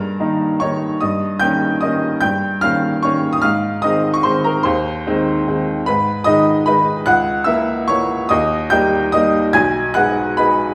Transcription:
Already playing: G2 A#4 A#5
0.20 D#3 A#3 D#4
0.60 D#3 A#3 D#4 C#5 C#6
1.01 G2 D#5 D#6
1.40 D#3 A#3 C#4 G5 G6
1.81 D#3 A#3 C#4 D#5 D#6
2.21 G2 G5 G6
2.61 D#3 A#3 C#4 F5 F6
3.03 D#3 A#3 C#4 C#5 C#6
3.33 D#6
3.42 G#2 F5 F6
3.82 D#3 G#3 C4 D#5 D#6
4.14 C#6
4.23 D#3 G#3 C4 C5 C6
4.44 A#4 A#5
4.63 D#2 C5 C6
5.07 D#3 G#3 C4
5.47 D#3 G#3 C4
5.86 G#2 B4 B5
6.24 D#3 G#3 D#4 D#5 D#6
6.66 D#3 G#3 D#4 B4 B5
7.06 C#2 F#5 F#6
7.44 E3 A#3 E5 E6
7.88 E3 A#3 C#5 C#6
8.29 D#2 D#5 D#6
8.70 G3 A#3 D#4 G5 G6
9.12 G3 A#3 D#4 D#5 D#6
9.53 B1 G#5 G#6
9.94 G#3 B3 D#4 F#5 F#6
10.37 G#3 B3 D#4 B4 B5

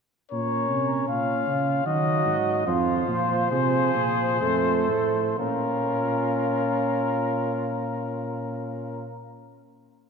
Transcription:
0.32 A#2 C#4 A#4 C#5
0.70 C3
1.08 A#2 F4 F5
1.47 C#3
1.85 D#3 F#3 F#4 D#5
2.26 G#2
2.66 F2 F3 F4 C5
3.08 A#2
3.51 C3 F3 G#4
3.95 A#2
4.41 F2 A3 A4
4.89 A2
5.39 A#2 C#4 F4 A#4

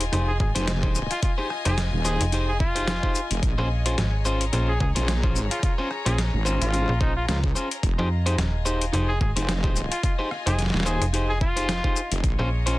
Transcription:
Already playing: D#1 F4 G#4 D#5 G#5
0.01 closed hi-hat
0.12 F1 D#4 G4 G#4 C5, closed hi-hat
0.28 G#4
0.40 G#1 G#4, kick
0.55 F1 D#4 G4 G#4 C5, closed hi-hat
0.68 snare, closed hi-hat
0.83 D#4 G4 G#4 C5, kick
0.95 shaker
1.11 F4, cross-stick, closed hi-hat
1.23 F4, kick, closed hi-hat
1.38 D#4 G4 G#4 C5
1.50 cross-stick
1.65 F1 D#4 G4 G#4 C5, closed hi-hat
1.78 snare, closed hi-hat
1.93 D#1
2.05 D#4 G4 G#4 C5, shaker
2.21 F1, closed hi-hat
2.32 D#4 G4 G#4 C5, closed hi-hat
2.48 G#4
2.60 F4, kick
2.75 D#4 G4 G#4 C5, closed hi-hat
2.88 snare, closed hi-hat
3.03 D#4 G4 G#4 C5, kick
3.15 shaker
3.31 F1, closed hi-hat
3.43 A#1 G#4, kick, closed hi-hat
3.58 A#1 C#4 F4 G#4 C5
3.68 C#5
3.86 C#4 F4 G#4 C5, closed hi-hat
3.98 G#1, snare, closed hi-hat
4.22 F4 G#4 C5 A#5, shaker
4.27 C#4
4.41 closed hi-hat
4.53 A#1 C#4 F4 G#4 C5, closed hi-hat
4.68 G#4
4.80 C#2 G#4, kick
4.95 A#1 C#4 F4 G#4 C5, closed hi-hat
5.08 snare, closed hi-hat
5.23 C#4 F4 G#4 C5, kick
5.33 A1, shaker
5.51 F4, cross-stick, closed hi-hat
5.59 kick, cross-stick
5.63 F4, closed hi-hat
5.68 cross-stick
5.78 C#4 F4 G#4 C5
5.91 cross-stick
6.06 A#1 C#4 F4 G#4 C5, closed hi-hat
6.18 snare, closed hi-hat
6.34 G#1
6.45 C#4 F4 G#4 C5, shaker
6.61 G#1 F4, closed hi-hat
6.73 C#4 F4 G#4 C5, closed hi-hat
6.89 A#1
7.01 C#4 D#4 F4 G#4 C5, kick
7.16 F4
7.28 C#2 F4, snare, closed hi-hat
7.44 kick
7.55 C#4 F4 G#4 C5, shaker
7.71 closed hi-hat
7.83 F1 F4, kick, closed hi-hat
7.94 D#5
7.98 F2 D#4 G4 G#4 C5
8.22 G#5
8.26 D#4 G4 G#4 C5, closed hi-hat
8.38 D#1, snare, closed hi-hat
8.65 D#4 G4 G#4 C5, shaker
8.82 closed hi-hat
8.93 F1 D#4 G4 G#4 C5, closed hi-hat
9.09 G#4
9.21 G#1 G#4, kick
9.36 F1 D#4 G4 G#4 C5, closed hi-hat
9.49 snare, closed hi-hat
9.64 D#4 G4 G#4 C5, kick
9.76 shaker
9.91 F4, cross-stick, closed hi-hat
10.04 F4, kick, closed hi-hat
10.19 D#4 G4 G#4 C5
10.31 cross-stick
10.46 F1 D#4 G4 G#4 C5, closed hi-hat
10.59 snare, closed hi-hat
10.62 snare
10.66 snare
10.70 snare
10.74 D#1, snare
10.77 snare
10.80 snare
10.83 D#4 G4 G#4 C5, snare, shaker
11.01 F1, closed hi-hat
11.13 D#4 G4 G#4 C5, closed hi-hat
11.29 G#4
11.41 F4, kick
11.56 D#4 G4 G#4 C5, closed hi-hat
11.69 snare, closed hi-hat
11.84 D#4 G4 G#4 C5, kick
11.96 shaker
12.12 F1, closed hi-hat
12.24 A#1 G#4, kick, closed hi-hat
12.29 C#5
12.39 A#1 C#4 F4 G#4 C5
12.61 A#5
12.66 C#4 F4 G#4 C5, closed hi-hat

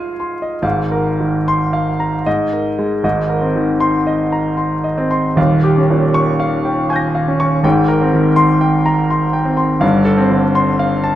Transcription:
Already playing: G#2 F4 D#5 F5 C6 F6 G#6 C7 D#7
0.20 C6
0.42 D#5
0.62 G#1 G#2 F5
0.92 A#4
1.20 D#3
1.48 C6
1.73 F5
2.00 A#5
2.26 G#2 D#5
2.53 A#4
2.79 G#3
3.03 G#1 G#2 D#5
3.30 A#4
3.41 C4
3.56 D#3
3.80 C6
4.07 D#5
4.32 A#5
4.57 C6
4.84 D#5
4.98 C4
5.11 C6
5.36 D#1 D#2 F5
5.64 G4
5.77 C#4
5.90 A#2
6.14 C#6
6.40 F5
6.65 G5
6.89 G#5 C#6 G6
6.96 A#6
7.15 F5
7.28 C#4
7.40 C#6
7.63 G#1 G#2 G5
7.88 A#4
8.01 C4
8.13 D#3
8.36 C6
8.61 G5
8.86 A#5
9.10 C6
9.33 G5
9.45 C4
9.57 C6
9.80 G1 G2 F5
10.05 A4
10.18 C4
10.30 D3
10.55 C6
10.79 F5
11.04 A5

